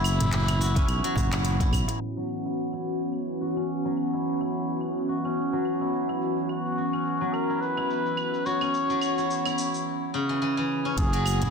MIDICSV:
0, 0, Header, 1, 7, 480
1, 0, Start_track
1, 0, Tempo, 560748
1, 1718, Time_signature, 4, 2, 24, 8
1, 9845, End_track
2, 0, Start_track
2, 0, Title_t, "Muted trumpet"
2, 0, Program_c, 0, 59
2, 0, Note_on_c, 0, 64, 121
2, 1201, Note_off_c, 0, 64, 0
2, 5558, Note_on_c, 0, 66, 81
2, 6273, Note_on_c, 0, 70, 83
2, 6286, Note_off_c, 0, 66, 0
2, 6515, Note_on_c, 0, 71, 100
2, 6528, Note_off_c, 0, 70, 0
2, 7241, Note_on_c, 0, 73, 99
2, 7254, Note_off_c, 0, 71, 0
2, 8440, Note_off_c, 0, 73, 0
2, 9399, Note_on_c, 0, 68, 109
2, 9845, Note_off_c, 0, 68, 0
2, 9845, End_track
3, 0, Start_track
3, 0, Title_t, "Guzheng"
3, 0, Program_c, 1, 107
3, 0, Note_on_c, 1, 54, 101
3, 0, Note_on_c, 1, 61, 72
3, 0, Note_on_c, 1, 64, 81
3, 0, Note_on_c, 1, 66, 75
3, 514, Note_off_c, 1, 66, 0
3, 517, Note_on_c, 1, 66, 69
3, 648, Note_off_c, 1, 61, 0
3, 652, Note_on_c, 1, 61, 77
3, 880, Note_off_c, 1, 54, 0
3, 891, Note_on_c, 1, 54, 95
3, 1129, Note_off_c, 1, 64, 0
3, 1133, Note_on_c, 1, 64, 74
3, 1368, Note_off_c, 1, 64, 0
3, 1372, Note_on_c, 1, 64, 75
3, 1761, Note_off_c, 1, 54, 0
3, 1857, Note_on_c, 1, 54, 83
3, 2092, Note_off_c, 1, 64, 0
3, 2096, Note_on_c, 1, 64, 65
3, 2332, Note_off_c, 1, 64, 0
3, 2336, Note_on_c, 1, 64, 64
3, 2603, Note_off_c, 1, 66, 0
3, 2920, Note_on_c, 1, 66, 59
3, 3050, Note_off_c, 1, 61, 0
3, 3054, Note_on_c, 1, 61, 65
3, 3285, Note_off_c, 1, 54, 0
3, 3295, Note_on_c, 1, 54, 88
3, 3534, Note_off_c, 1, 64, 0
3, 3537, Note_on_c, 1, 64, 66
3, 3771, Note_off_c, 1, 64, 0
3, 3774, Note_on_c, 1, 64, 70
3, 4351, Note_off_c, 1, 66, 0
3, 4355, Note_on_c, 1, 66, 60
3, 4488, Note_off_c, 1, 61, 0
3, 4492, Note_on_c, 1, 61, 67
3, 4721, Note_off_c, 1, 54, 0
3, 4732, Note_on_c, 1, 54, 88
3, 4968, Note_off_c, 1, 64, 0
3, 4971, Note_on_c, 1, 64, 64
3, 5210, Note_off_c, 1, 64, 0
3, 5213, Note_on_c, 1, 64, 63
3, 5797, Note_off_c, 1, 66, 0
3, 5801, Note_on_c, 1, 66, 64
3, 5933, Note_off_c, 1, 61, 0
3, 5937, Note_on_c, 1, 61, 61
3, 6162, Note_off_c, 1, 54, 0
3, 6172, Note_on_c, 1, 54, 88
3, 6411, Note_off_c, 1, 64, 0
3, 6415, Note_on_c, 1, 64, 64
3, 6651, Note_off_c, 1, 64, 0
3, 6654, Note_on_c, 1, 64, 71
3, 7237, Note_off_c, 1, 66, 0
3, 7241, Note_on_c, 1, 66, 69
3, 7373, Note_off_c, 1, 61, 0
3, 7376, Note_on_c, 1, 61, 67
3, 7606, Note_off_c, 1, 54, 0
3, 7616, Note_on_c, 1, 54, 90
3, 7855, Note_off_c, 1, 64, 0
3, 7858, Note_on_c, 1, 64, 64
3, 8092, Note_off_c, 1, 64, 0
3, 8096, Note_on_c, 1, 64, 66
3, 8679, Note_on_c, 1, 49, 69
3, 8721, Note_off_c, 1, 54, 0
3, 8810, Note_on_c, 1, 52, 68
3, 8906, Note_off_c, 1, 52, 0
3, 8917, Note_on_c, 1, 52, 75
3, 9040, Note_off_c, 1, 52, 0
3, 9050, Note_on_c, 1, 52, 67
3, 9285, Note_off_c, 1, 61, 0
3, 9289, Note_on_c, 1, 61, 65
3, 9327, Note_off_c, 1, 66, 0
3, 9441, Note_off_c, 1, 49, 0
3, 9441, Note_off_c, 1, 52, 0
3, 9527, Note_on_c, 1, 54, 100
3, 9767, Note_off_c, 1, 64, 0
3, 9770, Note_on_c, 1, 64, 73
3, 9845, Note_off_c, 1, 54, 0
3, 9845, Note_off_c, 1, 61, 0
3, 9845, Note_off_c, 1, 64, 0
3, 9845, End_track
4, 0, Start_track
4, 0, Title_t, "Analog synth pad"
4, 0, Program_c, 2, 89
4, 0, Note_on_c, 2, 52, 77
4, 0, Note_on_c, 2, 59, 72
4, 0, Note_on_c, 2, 61, 70
4, 0, Note_on_c, 2, 64, 88
4, 1683, Note_off_c, 2, 61, 0
4, 1684, Note_off_c, 2, 59, 0
4, 1685, Note_off_c, 2, 52, 0
4, 1711, Note_off_c, 2, 64, 0
4, 1713, Note_on_c, 2, 52, 74
4, 1715, Note_on_c, 2, 59, 61
4, 1715, Note_on_c, 2, 66, 80
4, 1717, Note_on_c, 2, 61, 66
4, 8402, Note_off_c, 2, 52, 0
4, 8402, Note_off_c, 2, 59, 0
4, 8402, Note_off_c, 2, 66, 0
4, 8403, Note_off_c, 2, 61, 0
4, 9397, Note_on_c, 2, 61, 73
4, 9398, Note_on_c, 2, 66, 85
4, 9400, Note_on_c, 2, 59, 70
4, 9401, Note_on_c, 2, 52, 80
4, 9845, Note_off_c, 2, 52, 0
4, 9845, Note_off_c, 2, 59, 0
4, 9845, Note_off_c, 2, 61, 0
4, 9845, Note_off_c, 2, 66, 0
4, 9845, End_track
5, 0, Start_track
5, 0, Title_t, "Fretless electric bass"
5, 0, Program_c, 3, 35
5, 0, Note_on_c, 3, 30, 100
5, 707, Note_off_c, 3, 30, 0
5, 756, Note_on_c, 3, 35, 85
5, 851, Note_off_c, 3, 35, 0
5, 996, Note_on_c, 3, 30, 91
5, 1474, Note_off_c, 3, 30, 0
5, 1474, Note_on_c, 3, 35, 80
5, 1571, Note_off_c, 3, 35, 0
5, 9396, Note_on_c, 3, 30, 99
5, 9845, Note_off_c, 3, 30, 0
5, 9845, End_track
6, 0, Start_track
6, 0, Title_t, "Darbuka"
6, 177, Note_on_c, 9, 64, 87
6, 263, Note_off_c, 9, 64, 0
6, 413, Note_on_c, 9, 62, 65
6, 499, Note_off_c, 9, 62, 0
6, 644, Note_on_c, 9, 62, 69
6, 729, Note_off_c, 9, 62, 0
6, 990, Note_on_c, 9, 63, 68
6, 996, Note_on_c, 9, 64, 79
6, 1075, Note_off_c, 9, 63, 0
6, 1082, Note_off_c, 9, 64, 0
6, 1374, Note_on_c, 9, 63, 54
6, 1460, Note_off_c, 9, 63, 0
6, 1476, Note_on_c, 9, 64, 75
6, 1562, Note_off_c, 9, 64, 0
6, 1611, Note_on_c, 9, 63, 67
6, 1696, Note_off_c, 9, 63, 0
6, 9779, Note_on_c, 9, 64, 86
6, 9845, Note_off_c, 9, 64, 0
6, 9845, End_track
7, 0, Start_track
7, 0, Title_t, "Drums"
7, 37, Note_on_c, 9, 75, 79
7, 44, Note_on_c, 9, 82, 76
7, 122, Note_off_c, 9, 75, 0
7, 129, Note_off_c, 9, 82, 0
7, 175, Note_on_c, 9, 42, 47
7, 182, Note_on_c, 9, 82, 33
7, 261, Note_off_c, 9, 42, 0
7, 268, Note_off_c, 9, 82, 0
7, 278, Note_on_c, 9, 39, 81
7, 278, Note_on_c, 9, 42, 60
7, 285, Note_on_c, 9, 82, 41
7, 364, Note_off_c, 9, 39, 0
7, 364, Note_off_c, 9, 42, 0
7, 371, Note_off_c, 9, 82, 0
7, 414, Note_on_c, 9, 42, 33
7, 414, Note_on_c, 9, 75, 76
7, 421, Note_on_c, 9, 82, 31
7, 500, Note_off_c, 9, 42, 0
7, 500, Note_off_c, 9, 75, 0
7, 507, Note_off_c, 9, 82, 0
7, 525, Note_on_c, 9, 82, 73
7, 611, Note_off_c, 9, 82, 0
7, 651, Note_on_c, 9, 36, 99
7, 654, Note_on_c, 9, 42, 43
7, 661, Note_on_c, 9, 82, 32
7, 737, Note_off_c, 9, 36, 0
7, 740, Note_off_c, 9, 42, 0
7, 747, Note_off_c, 9, 82, 0
7, 757, Note_on_c, 9, 42, 59
7, 757, Note_on_c, 9, 75, 75
7, 764, Note_on_c, 9, 82, 42
7, 843, Note_off_c, 9, 42, 0
7, 843, Note_off_c, 9, 75, 0
7, 850, Note_off_c, 9, 82, 0
7, 893, Note_on_c, 9, 42, 33
7, 900, Note_on_c, 9, 82, 28
7, 978, Note_off_c, 9, 42, 0
7, 985, Note_off_c, 9, 82, 0
7, 996, Note_on_c, 9, 36, 58
7, 1005, Note_on_c, 9, 82, 73
7, 1082, Note_off_c, 9, 36, 0
7, 1090, Note_off_c, 9, 82, 0
7, 1135, Note_on_c, 9, 39, 81
7, 1135, Note_on_c, 9, 42, 46
7, 1135, Note_on_c, 9, 75, 81
7, 1142, Note_on_c, 9, 82, 33
7, 1220, Note_off_c, 9, 39, 0
7, 1220, Note_off_c, 9, 42, 0
7, 1220, Note_off_c, 9, 75, 0
7, 1227, Note_off_c, 9, 82, 0
7, 1238, Note_on_c, 9, 42, 59
7, 1245, Note_on_c, 9, 82, 43
7, 1323, Note_off_c, 9, 42, 0
7, 1330, Note_off_c, 9, 82, 0
7, 1371, Note_on_c, 9, 36, 105
7, 1374, Note_on_c, 9, 42, 33
7, 1381, Note_on_c, 9, 82, 30
7, 1457, Note_off_c, 9, 36, 0
7, 1460, Note_off_c, 9, 42, 0
7, 1467, Note_off_c, 9, 82, 0
7, 1476, Note_on_c, 9, 36, 57
7, 1479, Note_on_c, 9, 75, 84
7, 1486, Note_on_c, 9, 82, 76
7, 1561, Note_off_c, 9, 36, 0
7, 1565, Note_off_c, 9, 75, 0
7, 1571, Note_off_c, 9, 82, 0
7, 1615, Note_on_c, 9, 42, 49
7, 1622, Note_on_c, 9, 82, 32
7, 1700, Note_off_c, 9, 42, 0
7, 1707, Note_off_c, 9, 82, 0
7, 1958, Note_on_c, 9, 75, 62
7, 1965, Note_on_c, 9, 82, 64
7, 2044, Note_off_c, 9, 75, 0
7, 2051, Note_off_c, 9, 82, 0
7, 2103, Note_on_c, 9, 82, 29
7, 2189, Note_off_c, 9, 82, 0
7, 2207, Note_on_c, 9, 82, 36
7, 2293, Note_off_c, 9, 82, 0
7, 2333, Note_on_c, 9, 75, 65
7, 2340, Note_on_c, 9, 82, 27
7, 2419, Note_off_c, 9, 75, 0
7, 2426, Note_off_c, 9, 82, 0
7, 2446, Note_on_c, 9, 82, 61
7, 2532, Note_off_c, 9, 82, 0
7, 2583, Note_on_c, 9, 82, 27
7, 2669, Note_off_c, 9, 82, 0
7, 2679, Note_on_c, 9, 75, 66
7, 2686, Note_on_c, 9, 82, 36
7, 2765, Note_off_c, 9, 75, 0
7, 2772, Note_off_c, 9, 82, 0
7, 2927, Note_on_c, 9, 82, 67
7, 3012, Note_off_c, 9, 82, 0
7, 3054, Note_on_c, 9, 75, 71
7, 3061, Note_on_c, 9, 82, 28
7, 3139, Note_off_c, 9, 75, 0
7, 3146, Note_off_c, 9, 82, 0
7, 3164, Note_on_c, 9, 82, 39
7, 3249, Note_off_c, 9, 82, 0
7, 3299, Note_on_c, 9, 82, 27
7, 3384, Note_off_c, 9, 82, 0
7, 3398, Note_on_c, 9, 75, 64
7, 3405, Note_on_c, 9, 82, 64
7, 3483, Note_off_c, 9, 75, 0
7, 3490, Note_off_c, 9, 82, 0
7, 3539, Note_on_c, 9, 82, 29
7, 3625, Note_off_c, 9, 82, 0
7, 3644, Note_on_c, 9, 82, 41
7, 3729, Note_off_c, 9, 82, 0
7, 3773, Note_on_c, 9, 75, 64
7, 3780, Note_on_c, 9, 82, 26
7, 3859, Note_off_c, 9, 75, 0
7, 3865, Note_off_c, 9, 82, 0
7, 3883, Note_on_c, 9, 82, 66
7, 3969, Note_off_c, 9, 82, 0
7, 4019, Note_on_c, 9, 82, 28
7, 4105, Note_off_c, 9, 82, 0
7, 4117, Note_on_c, 9, 75, 62
7, 4123, Note_on_c, 9, 82, 39
7, 4202, Note_off_c, 9, 75, 0
7, 4209, Note_off_c, 9, 82, 0
7, 4260, Note_on_c, 9, 82, 28
7, 4345, Note_off_c, 9, 82, 0
7, 4364, Note_on_c, 9, 82, 69
7, 4449, Note_off_c, 9, 82, 0
7, 4493, Note_on_c, 9, 75, 62
7, 4500, Note_on_c, 9, 82, 29
7, 4579, Note_off_c, 9, 75, 0
7, 4586, Note_off_c, 9, 82, 0
7, 4606, Note_on_c, 9, 82, 40
7, 4692, Note_off_c, 9, 82, 0
7, 4837, Note_on_c, 9, 75, 64
7, 4843, Note_on_c, 9, 82, 72
7, 4922, Note_off_c, 9, 75, 0
7, 4929, Note_off_c, 9, 82, 0
7, 4979, Note_on_c, 9, 82, 30
7, 5065, Note_off_c, 9, 82, 0
7, 5085, Note_on_c, 9, 82, 41
7, 5170, Note_off_c, 9, 82, 0
7, 5214, Note_on_c, 9, 75, 64
7, 5221, Note_on_c, 9, 82, 28
7, 5300, Note_off_c, 9, 75, 0
7, 5307, Note_off_c, 9, 82, 0
7, 5323, Note_on_c, 9, 82, 65
7, 5409, Note_off_c, 9, 82, 0
7, 5459, Note_on_c, 9, 82, 30
7, 5545, Note_off_c, 9, 82, 0
7, 5558, Note_on_c, 9, 75, 71
7, 5565, Note_on_c, 9, 82, 40
7, 5643, Note_off_c, 9, 75, 0
7, 5650, Note_off_c, 9, 82, 0
7, 5700, Note_on_c, 9, 82, 27
7, 5786, Note_off_c, 9, 82, 0
7, 5805, Note_on_c, 9, 82, 67
7, 5891, Note_off_c, 9, 82, 0
7, 5934, Note_on_c, 9, 75, 65
7, 5941, Note_on_c, 9, 82, 28
7, 6020, Note_off_c, 9, 75, 0
7, 6027, Note_off_c, 9, 82, 0
7, 6047, Note_on_c, 9, 82, 39
7, 6132, Note_off_c, 9, 82, 0
7, 6182, Note_on_c, 9, 82, 28
7, 6267, Note_off_c, 9, 82, 0
7, 6280, Note_on_c, 9, 75, 66
7, 6287, Note_on_c, 9, 82, 71
7, 6366, Note_off_c, 9, 75, 0
7, 6373, Note_off_c, 9, 82, 0
7, 6421, Note_on_c, 9, 82, 31
7, 6506, Note_off_c, 9, 82, 0
7, 6525, Note_on_c, 9, 82, 41
7, 6610, Note_off_c, 9, 82, 0
7, 6654, Note_on_c, 9, 75, 62
7, 6739, Note_off_c, 9, 75, 0
7, 6765, Note_on_c, 9, 82, 74
7, 6851, Note_off_c, 9, 82, 0
7, 6899, Note_on_c, 9, 82, 32
7, 6985, Note_off_c, 9, 82, 0
7, 6996, Note_on_c, 9, 75, 63
7, 7003, Note_on_c, 9, 82, 41
7, 7081, Note_off_c, 9, 75, 0
7, 7088, Note_off_c, 9, 82, 0
7, 7139, Note_on_c, 9, 82, 29
7, 7225, Note_off_c, 9, 82, 0
7, 7243, Note_on_c, 9, 82, 68
7, 7329, Note_off_c, 9, 82, 0
7, 7372, Note_on_c, 9, 75, 65
7, 7379, Note_on_c, 9, 82, 32
7, 7458, Note_off_c, 9, 75, 0
7, 7465, Note_off_c, 9, 82, 0
7, 7482, Note_on_c, 9, 82, 43
7, 7567, Note_off_c, 9, 82, 0
7, 7618, Note_on_c, 9, 82, 27
7, 7704, Note_off_c, 9, 82, 0
7, 7716, Note_on_c, 9, 75, 63
7, 7723, Note_on_c, 9, 82, 74
7, 7802, Note_off_c, 9, 75, 0
7, 7809, Note_off_c, 9, 82, 0
7, 7860, Note_on_c, 9, 82, 32
7, 7945, Note_off_c, 9, 82, 0
7, 7964, Note_on_c, 9, 82, 39
7, 8050, Note_off_c, 9, 82, 0
7, 8093, Note_on_c, 9, 75, 69
7, 8100, Note_on_c, 9, 82, 29
7, 8179, Note_off_c, 9, 75, 0
7, 8186, Note_off_c, 9, 82, 0
7, 8203, Note_on_c, 9, 82, 73
7, 8288, Note_off_c, 9, 82, 0
7, 8338, Note_on_c, 9, 82, 30
7, 8424, Note_off_c, 9, 82, 0
7, 9396, Note_on_c, 9, 36, 115
7, 9396, Note_on_c, 9, 42, 71
7, 9402, Note_on_c, 9, 82, 47
7, 9481, Note_off_c, 9, 42, 0
7, 9482, Note_off_c, 9, 36, 0
7, 9488, Note_off_c, 9, 82, 0
7, 9533, Note_on_c, 9, 42, 42
7, 9539, Note_on_c, 9, 82, 29
7, 9618, Note_off_c, 9, 42, 0
7, 9625, Note_off_c, 9, 82, 0
7, 9635, Note_on_c, 9, 75, 74
7, 9642, Note_on_c, 9, 82, 77
7, 9720, Note_off_c, 9, 75, 0
7, 9727, Note_off_c, 9, 82, 0
7, 9773, Note_on_c, 9, 42, 33
7, 9779, Note_on_c, 9, 82, 31
7, 9845, Note_off_c, 9, 42, 0
7, 9845, Note_off_c, 9, 82, 0
7, 9845, End_track
0, 0, End_of_file